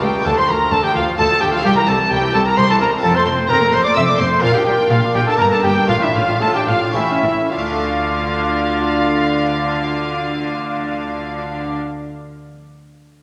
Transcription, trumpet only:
0, 0, Header, 1, 2, 480
1, 0, Start_track
1, 0, Key_signature, -1, "minor"
1, 0, Tempo, 463679
1, 270, Time_signature, 3, 2, 24, 8
1, 4591, Tempo, 480000
1, 5551, Tempo, 508044
1, 6511, Tempo, 553506
1, 7471, Tempo, 579151
1, 12203, End_track
2, 0, Start_track
2, 0, Title_t, "Trumpet"
2, 0, Program_c, 0, 56
2, 27, Note_on_c, 0, 67, 70
2, 255, Note_off_c, 0, 67, 0
2, 261, Note_on_c, 0, 69, 89
2, 377, Note_off_c, 0, 69, 0
2, 383, Note_on_c, 0, 72, 76
2, 509, Note_on_c, 0, 70, 76
2, 525, Note_off_c, 0, 72, 0
2, 743, Note_on_c, 0, 69, 90
2, 759, Note_off_c, 0, 70, 0
2, 860, Note_on_c, 0, 67, 80
2, 876, Note_off_c, 0, 69, 0
2, 967, Note_off_c, 0, 67, 0
2, 974, Note_on_c, 0, 65, 82
2, 1211, Note_off_c, 0, 65, 0
2, 1217, Note_on_c, 0, 69, 92
2, 1456, Note_on_c, 0, 67, 88
2, 1471, Note_off_c, 0, 69, 0
2, 1573, Note_off_c, 0, 67, 0
2, 1579, Note_on_c, 0, 65, 78
2, 1701, Note_off_c, 0, 65, 0
2, 1706, Note_on_c, 0, 67, 100
2, 1761, Note_off_c, 0, 67, 0
2, 1821, Note_on_c, 0, 70, 80
2, 1877, Note_off_c, 0, 70, 0
2, 1952, Note_on_c, 0, 69, 77
2, 2059, Note_off_c, 0, 69, 0
2, 2179, Note_on_c, 0, 67, 87
2, 2419, Note_off_c, 0, 67, 0
2, 2427, Note_on_c, 0, 69, 93
2, 2535, Note_off_c, 0, 69, 0
2, 2542, Note_on_c, 0, 70, 85
2, 2667, Note_on_c, 0, 72, 94
2, 2683, Note_off_c, 0, 70, 0
2, 2778, Note_off_c, 0, 72, 0
2, 2784, Note_on_c, 0, 69, 85
2, 2897, Note_off_c, 0, 69, 0
2, 2903, Note_on_c, 0, 70, 81
2, 3012, Note_off_c, 0, 70, 0
2, 3148, Note_on_c, 0, 69, 100
2, 3263, Note_on_c, 0, 72, 88
2, 3279, Note_off_c, 0, 69, 0
2, 3373, Note_off_c, 0, 72, 0
2, 3379, Note_on_c, 0, 72, 92
2, 3619, Note_on_c, 0, 70, 103
2, 3635, Note_off_c, 0, 72, 0
2, 3875, Note_on_c, 0, 72, 90
2, 3890, Note_off_c, 0, 70, 0
2, 3980, Note_on_c, 0, 74, 94
2, 3995, Note_off_c, 0, 72, 0
2, 4101, Note_off_c, 0, 74, 0
2, 4107, Note_on_c, 0, 76, 102
2, 4161, Note_off_c, 0, 76, 0
2, 4218, Note_on_c, 0, 74, 89
2, 4346, Note_on_c, 0, 72, 104
2, 4362, Note_off_c, 0, 74, 0
2, 4577, Note_on_c, 0, 65, 98
2, 4593, Note_off_c, 0, 72, 0
2, 4686, Note_off_c, 0, 65, 0
2, 4692, Note_on_c, 0, 67, 85
2, 4810, Note_off_c, 0, 67, 0
2, 4816, Note_on_c, 0, 67, 84
2, 4926, Note_off_c, 0, 67, 0
2, 5051, Note_on_c, 0, 65, 79
2, 5163, Note_off_c, 0, 65, 0
2, 5305, Note_on_c, 0, 67, 86
2, 5360, Note_off_c, 0, 67, 0
2, 5420, Note_on_c, 0, 69, 85
2, 5530, Note_off_c, 0, 69, 0
2, 5536, Note_on_c, 0, 70, 90
2, 5592, Note_off_c, 0, 70, 0
2, 5653, Note_on_c, 0, 69, 84
2, 5770, Note_off_c, 0, 69, 0
2, 5775, Note_on_c, 0, 67, 89
2, 5884, Note_off_c, 0, 67, 0
2, 6016, Note_on_c, 0, 65, 90
2, 6071, Note_off_c, 0, 65, 0
2, 6130, Note_on_c, 0, 64, 75
2, 6252, Note_off_c, 0, 64, 0
2, 6258, Note_on_c, 0, 65, 81
2, 6509, Note_on_c, 0, 69, 89
2, 6522, Note_off_c, 0, 65, 0
2, 6624, Note_off_c, 0, 69, 0
2, 6631, Note_on_c, 0, 67, 78
2, 6739, Note_off_c, 0, 67, 0
2, 6744, Note_on_c, 0, 65, 76
2, 6979, Note_on_c, 0, 64, 73
2, 6992, Note_off_c, 0, 65, 0
2, 7466, Note_off_c, 0, 64, 0
2, 7471, Note_on_c, 0, 65, 82
2, 10978, Note_off_c, 0, 65, 0
2, 12203, End_track
0, 0, End_of_file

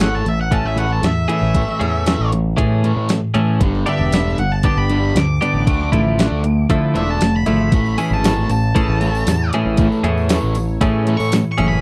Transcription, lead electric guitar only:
0, 0, Header, 1, 2, 480
1, 0, Start_track
1, 0, Key_signature, 3, "major"
1, 0, Tempo, 515021
1, 1443, Time_signature, 4, 2, 24, 8
1, 11009, End_track
2, 0, Start_track
2, 0, Title_t, "Lead electric guitar"
2, 0, Program_c, 0, 29
2, 20, Note_on_c, 0, 78, 91
2, 126, Note_off_c, 0, 78, 0
2, 139, Note_on_c, 0, 81, 70
2, 246, Note_off_c, 0, 81, 0
2, 265, Note_on_c, 0, 76, 82
2, 370, Note_off_c, 0, 76, 0
2, 381, Note_on_c, 0, 78, 70
2, 487, Note_off_c, 0, 78, 0
2, 505, Note_on_c, 0, 81, 86
2, 610, Note_off_c, 0, 81, 0
2, 611, Note_on_c, 0, 76, 80
2, 723, Note_off_c, 0, 76, 0
2, 732, Note_on_c, 0, 78, 78
2, 843, Note_off_c, 0, 78, 0
2, 860, Note_on_c, 0, 81, 78
2, 968, Note_off_c, 0, 81, 0
2, 981, Note_on_c, 0, 76, 78
2, 1197, Note_off_c, 0, 76, 0
2, 1208, Note_on_c, 0, 76, 77
2, 2137, Note_off_c, 0, 76, 0
2, 3623, Note_on_c, 0, 76, 92
2, 4079, Note_off_c, 0, 76, 0
2, 4091, Note_on_c, 0, 78, 99
2, 4212, Note_off_c, 0, 78, 0
2, 4212, Note_on_c, 0, 81, 80
2, 4440, Note_off_c, 0, 81, 0
2, 4452, Note_on_c, 0, 83, 85
2, 4796, Note_off_c, 0, 83, 0
2, 4820, Note_on_c, 0, 86, 109
2, 6212, Note_off_c, 0, 86, 0
2, 6490, Note_on_c, 0, 76, 96
2, 6602, Note_off_c, 0, 76, 0
2, 6620, Note_on_c, 0, 81, 78
2, 6843, Note_off_c, 0, 81, 0
2, 6862, Note_on_c, 0, 83, 77
2, 7548, Note_off_c, 0, 83, 0
2, 7582, Note_on_c, 0, 81, 75
2, 7920, Note_off_c, 0, 81, 0
2, 7930, Note_on_c, 0, 81, 100
2, 8854, Note_off_c, 0, 81, 0
2, 10412, Note_on_c, 0, 85, 75
2, 10559, Note_off_c, 0, 85, 0
2, 10734, Note_on_c, 0, 85, 78
2, 10880, Note_off_c, 0, 85, 0
2, 10884, Note_on_c, 0, 83, 87
2, 11009, Note_off_c, 0, 83, 0
2, 11009, End_track
0, 0, End_of_file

